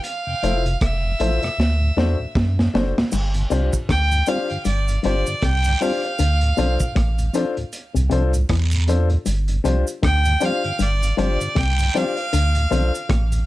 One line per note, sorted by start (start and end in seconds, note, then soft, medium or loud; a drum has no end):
0.04 0.77 F5 loud
0.04 closed hi-hat medium
0.27 0.35 F2 medium
0.27 0.35 C3 medium
0.43 0.77 F1 medium
0.43 0.54 F3 medium
0.43 0.54 A3 medium
0.43 0.62 E4 medium
0.43 0.54 E4 medium
0.43 0.62 F4 medium
0.43 0.62 A4 medium
0.43 0.63 C5 medium
0.43 closed hi-hat medium
0.66 0.73 F2 medium
0.66 0.73 C3 medium
0.66 closed hi-hat soft
0.81 1.15 F1 medium
0.81 2.71 E5 loud
0.81 kick loud
0.81 cross-stick loud
0.81 closed hi-hat medium
1.04 1.12 F2 medium
1.04 1.12 C3 medium
1.20 1.40 A1 medium
1.20 1.31 F3 medium
1.20 1.31 A3 medium
1.20 1.39 E4 medium
1.20 1.31 E4 medium
1.20 1.39 F4 medium
1.20 1.39 A4 medium
1.20 1.40 C5 loud
1.20 closed hi-hat medium
1.42 1.50 F2 medium
1.42 1.50 C3 medium
1.42 1.49 A4 soft
1.42 1.49 C5 soft
1.42 cross-stick medium
1.42 closed hi-hat soft
1.58 1.92 D2 loud
1.58 snare medium
1.81 1.89 D2 soft
1.81 1.89 A2 medium
1.97 2.16 E2 medium
1.97 2.08 F#3 medium
1.97 2.08 C4 medium
1.97 2.16 D4 medium
1.97 2.08 D4 medium
1.97 2.16 F#4 medium
1.97 2.16 A4 medium
1.97 2.17 C5 medium
1.97 snare medium
2.19 2.27 D2 medium
2.19 2.27 A2 medium
2.35 2.69 F#2 medium
2.35 kick loud
2.35 snare medium
2.58 2.66 D2 medium
2.58 2.65 A2 medium
2.58 snare medium
2.74 2.94 F#1 medium
2.74 2.85 F#3 medium
2.74 2.85 C4 medium
2.74 2.93 D4 medium
2.74 2.85 D4 medium
2.74 2.93 F#4 medium
2.74 2.93 A4 medium
2.74 2.94 C5 loud
2.74 snare medium
2.97 3.04 D2 medium
2.97 3.04 A2 medium
2.97 snare medium
3.12 3.46 G1 loud
3.12 3.35 G2 medium
3.12 crash loud
3.12 cabasa medium
3.34 3.43 G2 medium
3.34 3.43 D3 medium
3.34 closed hi-hat medium
3.50 3.70 C2 medium
3.50 3.64 C3 medium
3.50 3.62 G3 medium
3.50 3.62 C4 medium
3.50 3.70 D4 medium
3.50 3.70 F4 medium
3.50 3.62 F4 medium
3.50 3.70 G4 medium
3.50 3.70 C5 loud
3.50 closed hi-hat medium
3.50 cabasa soft
3.73 kick medium
3.73 closed hi-hat soft
3.73 cabasa medium
3.89 4.23 D2 loud
3.89 4.12 D3 medium
3.89 4.30 G5 loud
3.89 kick loud
3.89 cross-stick loud
3.89 closed hi-hat medium
4.11 4.19 G2 medium
4.11 4.19 D3 medium
4.11 closed hi-hat medium
4.11 cabasa medium
4.26 4.38 G3 medium
4.26 4.39 C4 medium
4.26 4.46 D4 loud
4.26 4.47 F4 medium
4.26 4.39 F4 medium
4.26 4.47 G4 medium
4.26 4.47 C5 loud
4.26 4.66 F5 loud
4.26 closed hi-hat medium
4.26 cabasa medium
4.50 4.58 G2 medium
4.50 4.58 D3 medium
4.50 closed hi-hat soft
4.65 4.99 G1 loud
4.65 4.88 G2 medium
4.65 5.02 D5 medium
4.65 closed hi-hat medium
4.65 cabasa medium
4.88 4.97 G2 medium
4.88 4.96 D3 medium
4.88 closed hi-hat medium
4.88 cabasa medium
5.03 5.24 G1 loud
5.03 5.17 G2 medium
5.03 5.15 G3 medium
5.03 5.15 C4 medium
5.03 5.23 D4 medium
5.03 5.24 F4 medium
5.03 5.16 F4 medium
5.03 5.24 G4 medium
5.03 5.24 C5 loud
5.03 5.45 D5 medium
5.03 closed hi-hat medium
5.26 5.35 G2 medium
5.26 5.35 D3 medium
5.26 closed hi-hat soft
5.26 cabasa medium
5.42 5.76 C2 medium
5.42 5.65 C3 medium
5.42 5.83 G5 loud
5.42 kick loud
5.42 cross-stick loud
5.42 closed hi-hat loud
5.42 long guiro medium
5.64 5.73 G2 medium
5.64 5.73 D3 medium
5.64 closed hi-hat medium
5.64 cabasa medium
5.81 5.92 G3 medium
5.81 5.92 C4 medium
5.81 6.00 D4 medium
5.81 6.00 F4 medium
5.81 5.92 F4 medium
5.81 6.01 G4 medium
5.81 6.01 C5 loud
5.81 7.35 F5 loud
5.81 open hi-hat medium
5.81 cabasa soft
6.03 6.10 G4 soft
6.03 6.10 C5 soft
6.03 closed hi-hat soft
6.19 6.53 D2 loud
6.19 6.42 D3 medium
6.19 closed hi-hat medium
6.19 cabasa medium
6.41 6.50 D2 medium
6.41 6.50 A2 medium
6.41 closed hi-hat medium
6.57 6.78 B1 loud
6.57 6.71 B2 medium
6.57 6.69 F3 medium
6.57 6.69 C4 medium
6.57 6.77 D4 loud
6.57 6.69 D4 medium
6.57 6.77 F4 medium
6.57 6.77 A4 medium
6.57 6.77 C5 loud
6.57 closed hi-hat medium
6.57 cabasa medium
6.80 kick medium
6.80 cabasa medium
6.95 7.30 A1 medium
6.95 7.19 A2 medium
6.95 kick loud
6.95 cross-stick loud
6.95 closed hi-hat medium
7.18 7.26 D2 medium
7.18 7.26 A2 medium
7.18 closed hi-hat soft
7.18 cabasa medium
7.33 7.45 F3 medium
7.33 7.45 C4 medium
7.33 7.45 D4 medium
7.33 7.54 D4 medium
7.33 7.54 F4 medium
7.33 7.54 A4 medium
7.33 7.54 C5 loud
7.33 closed hi-hat medium
7.33 cabasa medium
7.57 7.65 D2 medium
7.57 7.65 A2 medium
7.57 closed hi-hat soft
7.72 closed hi-hat medium
7.72 cabasa medium
7.94 8.09 C2 loud
7.94 8.03 D2 medium
7.94 8.03 A2 medium
7.94 8.04 C3 medium
7.94 closed hi-hat medium
7.94 cabasa medium
8.10 8.45 C2 medium
8.10 8.33 C3 medium
8.10 8.22 F3 medium
8.10 8.22 C4 medium
8.10 8.30 D4 medium
8.10 8.22 D4 medium
8.10 8.31 F4 medium
8.10 8.31 A4 medium
8.10 8.31 C5 loud
8.10 closed hi-hat medium
8.33 8.42 D2 medium
8.33 8.42 A2 medium
8.33 closed hi-hat soft
8.33 cabasa medium
8.49 9.17 E2 loud
8.49 8.73 E3 medium
8.49 kick loud
8.49 cross-stick loud
8.49 closed hi-hat loud
8.49 long guiro medium
8.71 8.80 D2 medium
8.71 8.80 A2 medium
8.71 closed hi-hat medium
8.71 cabasa medium
8.87 8.99 F3 medium
8.87 8.99 C4 medium
8.87 9.07 D4 medium
8.87 8.99 D4 medium
8.87 9.07 F4 medium
8.87 9.08 A4 medium
8.87 9.08 C5 loud
8.87 closed hi-hat medium
8.87 cabasa medium
9.10 9.18 D2 medium
9.10 9.18 A2 medium
9.10 9.17 A4 soft
9.10 9.17 C5 soft
9.10 closed hi-hat soft
9.26 9.60 G1 loud
9.26 9.49 G2 medium
9.26 closed hi-hat loud
9.26 cabasa medium
9.48 9.57 G2 medium
9.48 9.57 D3 medium
9.48 closed hi-hat medium
9.64 9.84 C2 medium
9.64 9.78 C3 medium
9.64 9.76 F3 medium
9.64 9.76 G3 medium
9.64 9.76 C4 medium
9.64 9.84 D4 loud
9.64 9.84 F4 medium
9.64 9.84 G4 medium
9.64 9.84 C5 loud
9.64 closed hi-hat medium
9.64 cabasa soft
9.87 closed hi-hat soft
9.87 cabasa medium
10.03 10.37 D2 loud
10.03 10.26 D3 medium
10.03 10.46 G5 loud
10.03 kick loud
10.03 cross-stick loud
10.03 closed hi-hat medium
10.25 10.33 G2 medium
10.25 10.33 D3 medium
10.25 closed hi-hat medium
10.25 cabasa medium
10.40 10.52 F3 medium
10.40 10.53 G3 medium
10.40 10.53 C4 medium
10.40 10.60 D4 medium
10.40 10.60 F4 medium
10.40 10.60 G4 medium
10.40 10.61 C5 loud
10.40 closed hi-hat medium
10.40 cabasa medium
10.44 10.84 F5 loud
10.64 10.72 G2 medium
10.64 10.72 D3 medium
10.64 closed hi-hat soft
10.79 11.13 G1 loud
10.79 11.02 G2 medium
10.79 11.18 D5 loud
10.79 closed hi-hat medium
10.79 cabasa medium
11.03 11.10 G2 medium
11.03 11.10 D3 medium
11.03 closed hi-hat medium
11.03 cabasa medium
11.17 11.38 G1 loud
11.17 11.31 G2 medium
11.17 11.29 F3 medium
11.17 11.29 G3 medium
11.17 11.29 C4 medium
11.17 11.37 D4 medium
11.17 11.37 F4 medium
11.17 11.37 G4 medium
11.17 11.37 C5 loud
11.17 11.59 D5 loud
11.17 closed hi-hat medium
11.40 11.48 G2 medium
11.40 11.49 D3 medium
11.40 closed hi-hat soft
11.40 cabasa medium
11.55 11.90 C2 medium
11.55 11.79 C3 medium
11.55 11.98 G5 medium
11.55 kick loud
11.55 cross-stick loud
11.55 closed hi-hat loud
11.55 long guiro medium
11.78 11.87 G2 medium
11.78 11.86 D3 medium
11.78 closed hi-hat medium
11.78 cabasa medium
11.94 12.06 F3 medium
11.94 12.06 G3 medium
11.94 12.06 C4 medium
11.94 12.14 D4 medium
11.94 12.14 F4 medium
11.94 12.14 G4 medium
11.94 12.14 C5 loud
11.94 13.46 F5 loud
11.94 closed hi-hat medium
11.94 cabasa soft
12.17 12.24 G4 soft
12.17 12.23 C5 soft
12.17 closed hi-hat soft
12.33 12.67 D2 loud
12.33 12.56 D3 medium
12.33 closed hi-hat loud
12.33 cabasa medium
12.55 12.63 D2 medium
12.55 12.63 A2 medium
12.55 closed hi-hat medium
12.70 12.91 B1 loud
12.70 12.85 B2 medium
12.70 12.82 D3 medium
12.70 12.82 F3 medium
12.70 12.82 C4 medium
12.70 12.90 D4 medium
12.70 12.90 F4 medium
12.70 12.90 A4 medium
12.70 12.91 C5 loud
12.70 closed hi-hat medium
12.70 cabasa medium
12.94 closed hi-hat soft
12.94 cabasa medium
13.09 13.43 A1 loud
13.09 13.32 A2 medium
13.09 kick loud
13.09 cross-stick loud
13.09 closed hi-hat medium
13.32 13.40 D2 medium
13.32 13.40 A2 medium
13.32 closed hi-hat soft
13.32 cabasa medium